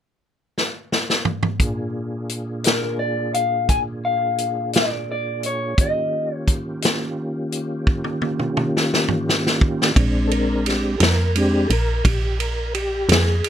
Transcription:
0.58 snare
0.92 snare
1.10 snare
1.25 mid tom
1.43 mid tom
1.60 A#2 A#3 D4 F4 G#4, kick, closed hi-hat
2.29 closed hi-hat
2.64 A#4, snare, closed hi-hat
2.99 D5
3.34 F5, closed hi-hat
3.69 G#5, kick, closed hi-hat
4.05 F5
4.38 closed hi-hat
4.73 D5, snare, closed hi-hat
5.12 D5
5.43 C#5, closed hi-hat
5.77 D#3 A#3 C#4 F4 G4, kick, closed hi-hat
5.81 D#5
6.34 C#5
6.48 kick, closed hi-hat
6.82 snare, closed hi-hat
7.52 closed hi-hat
7.87 kick
8.04 high tom
8.22 high tom
8.39 mid tom
8.57 mid tom
8.77 snare
8.94 snare
9.08 mid tom
9.29 snare
9.47 snare
9.61 kick
9.82 snare
9.94 A#1 G#3 C4 D4, kick, ride
10.27 A4, ride
10.32 A#4
10.66 G4, snare, ride
10.98 F2 A4, ride
11.02 A#4, snare
11.35 G#3 C4 D4 G4, ride
11.67 A#1 A4, ride
11.73 A#4
12.04 A#1 G4, kick, ride
12.39 A#4, ride
12.75 G4, ride
13.09 F2 G#4, snare, ride
13.44 ride

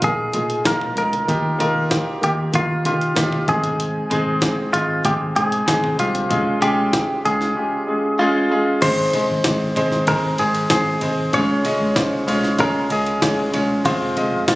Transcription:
Already playing: A#2 D#4 F4 A#4
0.00 A#1 A#3 D#4 F4 A#4, kick, closed hi-hat
0.04 G#4
0.33 A#2 A#3 D#4 F4 G#4, closed hi-hat, floor tom
0.50 closed hi-hat
0.65 A#1 A#3 D#4 F4 A#4, kick, snare, closed hi-hat
0.81 floor tom
0.97 C#2 A#3 D#4 F4 A#4, closed hi-hat
1.13 closed hi-hat, floor tom
1.27 D#2 D#3 A#3 D#4 F4 G4, kick, closed hi-hat
1.59 D#2 A#3 D#4 F4 A#4, closed hi-hat, floor tom
1.90 A#3 D#4 F4 G4, kick, snare, closed hi-hat
2.22 D#2 A#3 D#4 F4 G4, closed hi-hat
2.52 D#2 A#3 D#4 F4 A#4, kick, closed hi-hat
2.85 D#3 A#3 D#4 F4 G4, closed hi-hat, floor tom
3.01 closed hi-hat
3.15 D#2 A#3 D#4 F4 G4, kick, snare, closed hi-hat
3.33 floor tom
3.47 G#1 G#2 G#3 C4 D#4 G#4, kick, closed hi-hat
3.64 closed hi-hat, floor tom
3.80 closed hi-hat
4.10 G#1 G#3 C4 D#4 G#4, closed hi-hat, floor tom
4.41 G#3 C4 D#4 G#4, kick, snare, closed hi-hat
4.73 G#1 G#3 C4 D#4 F4 G#4, closed hi-hat
5.04 G#1 G#3 C4 D#4 G4 G#4, kick, closed hi-hat
5.35 G#2 G#3 C4 D#4 G#4, closed hi-hat, floor tom
5.52 closed hi-hat
5.66 G#1 G#3 C4 D#4 G#4, kick, snare, closed hi-hat
5.84 floor tom
5.97 C2 G#3 C4 D#4 F4 G4, closed hi-hat
6.15 closed hi-hat, floor tom
6.29 C#2 C#3 G#3 C#4 F4 G#4, kick, closed hi-hat
6.61 C#2 G#3 C#4 F4 G4 G#4, closed hi-hat, floor tom
6.92 G#3 C#4 F4 G#4, kick, snare, closed hi-hat
7.24 C#2 G#3 C#4 F4 G#4, closed hi-hat
7.41 snare
7.55 G#3 C#4 F4 G4
7.87 G#3 C#4 F4 G#4
8.19 G#3 C#4 F4 G#4
8.50 G#3 C#4 F4 G#4
8.81 G#1 G#2 G#3 C4 D#4 G#4 C5, kick, crash, ride
9.12 G#3 C4 D#4 G#4 C5, floor tom, ride
9.30 G#1
9.44 G#1 G#3 C4 D#4 G#4 C5, kick, snare, ride
9.75 G#1 G#3 C4 D#4 G#4 C5, floor tom, ride
9.92 snare
10.07 G#1 G#3 C4 D#4 G#4 A#4 C5, kick, ride
10.38 G#1 G#3 C4 D#4 G#4 C5, ride
10.55 ride
10.70 G#1 G#3 C4 D#4 G#4 C5, kick, snare, ride
11.01 G#1 G#3 C4 D#4 G#4 C5, floor tom, ride
11.33 C#2 C#3 G#3 C#4 F4 G#4 C#5, kick, ride
11.64 G#3 C#4 F4 G#4 D#5, floor tom, ride
11.80 C#2
11.96 C#2 G#3 C#4 F4 G#4 C5, kick, snare, ride
12.27 C#2 G#3 C#4 F4 G#4 C#5, floor tom, ride
12.44 snare
12.58 C#2 G#3 C#4 F4 G#4 A#4 C#5, kick, ride
12.89 C#2 G#3 C#4 F4 G#4 D#5, ride
13.06 ride
13.21 C#2 G#3 C#4 F4 G#4 C#5, kick, snare, ride
13.52 C#2 G#3 C#4 F4 G#4 C#5, floor tom, ride
13.84 F1 G#3 C4 F4 G#4 C5, kick, ride
14.16 G#3 C4 F4 G#4 D#5, floor tom, ride
14.32 F1
14.47 F1 G#3 C4 F4 G#4 C5, kick, snare, ride

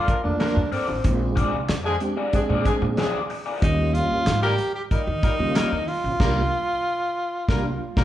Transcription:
Already playing: F4
0.08 F3 A#3 D4 A#4, muted overdriven electric guitar stroke, kick, closed hi-hat
0.24 F2 A3 A#3 D4 F4, muted overdriven electric guitar stroke
0.40 F3 A#3 D4 A#4, muted overdriven electric guitar stroke, snare, clap, closed hi-hat
0.57 G2
0.72 A#3 C4 F4 A4 D5, open hi-hat
0.88 A1 D4 F4, muted overdriven electric guitar stroke
1.04 A#1 G#3 C4 D4 E4, kick, closed hi-hat
1.11 F4
1.36 C4 F4 G#4 D5, kick, closed hi-hat
1.53 C2
1.69 F2, muted overdriven electric guitar stroke, snare, clap, closed hi-hat
1.84 F3 G#3 D4 G#4, muted overdriven electric guitar stroke
2.00 G#3 C4 D4 G4, closed hi-hat
2.17 C4 F4 G#4 D5
2.33 F3 G#3 C4 D4 G4 G#4, muted upright bass stroke, muted overdriven electric guitar stroke, kick, closed hi-hat
2.39 G#4
2.50 A#2 C4 F4 G#4 D5
2.65 F3 G#3 D4 G#4, muted overdriven electric guitar stroke, kick, closed hi-hat
2.82 A#2, muted overdriven electric guitar stroke
2.97 F3 G#3 C4 D4 F4 G#4 D5, snare, clap, closed hi-hat
3.30 muted overdriven electric guitar stroke, open hi-hat
3.46 C4 F4 G#4 D5
3.62 D#2 G3 A#3 C#4 D#4 F4, kick, closed hi-hat
3.94 F4, closed hi-hat
4.11 G2
4.27 G#2, snare, clap, closed hi-hat
4.42 G3 A#3 F4 G4 A#4
4.58 closed hi-hat
4.75 G4
4.91 G3 A#3 D#4 F4 A#4, muted upright bass stroke, kick, closed hi-hat
5.07 D#3
5.23 G3 A#3 F4 A#4, kick, closed hi-hat
5.39 C#3 G3 A#3 C#4 F4
5.55 G3 A#3 F4 A#4, snare, clap, closed hi-hat
5.72 D#3
5.88 F4, open hi-hat
6.04 B1 C#4 F4
6.20 C2 G3 A#3 D4 F4 A#4, kick, snare, crash
7.48 C2 G3 A#3 D4 F4 A#4, kick, snare
7.55 F4
7.96 C2 G3 A#3 D4 F4 A#4, kick, snare

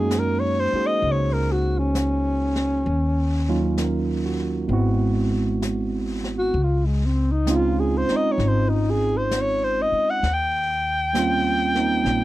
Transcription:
Already playing: F#2 G#3 A#3 C#4 D#4 F#4 G#4
0.11 brush sweep, snare, hi-hat pedal
0.19 A#4
0.40 C#5
0.59 C5
0.73 D#4 F#4 G#4 C5, muted upright bass stroke
0.86 D#5
1.02 C#2, brush sweep
1.11 C#5
1.33 A#4
1.52 F#4
1.78 C#4
1.95 brush sweep, snare, hi-hat pedal
2.56 snare
2.86 D#2, brush sweep
3.49 F#3 A#3 C#4 D#4 F4
3.78 A#4, brush sweep, snare, hi-hat pedal
4.26 F#4
4.68 G#1 G#3 B3 C4 E4, brush sweep
4.73 F#4
5.62 brush sweep, snare, hi-hat pedal
6.24 snare
6.38 F#4
6.54 C#2, brush sweep
6.63 F4
6.85 G#3
7.05 C4
7.32 D#4
7.46 G#3 C4 C#4 D#4, brush sweep, snare, hi-hat pedal
7.50 F4
7.55 F4
7.79 G#4
7.97 C5
8.08 C4 D#4, muted upright bass stroke, snare
8.16 D#5
8.32 C#5
8.38 G#1, brush sweep, snare
8.47 C5
8.69 D#4
8.90 G#4
9.17 C5
9.31 brush sweep, snare, hi-hat pedal
9.41 C#5
9.64 C5
9.82 D#5
9.92 muted upright bass stroke
10.10 F#5
10.23 D#2, brush sweep, snare
10.34 G5
11.13 G3 A#3 C4 C#4, brush sweep, snare, hi-hat pedal
11.18 F4
11.75 A#3 C4 D#4, snare
12.05 A#1, brush sweep, snare

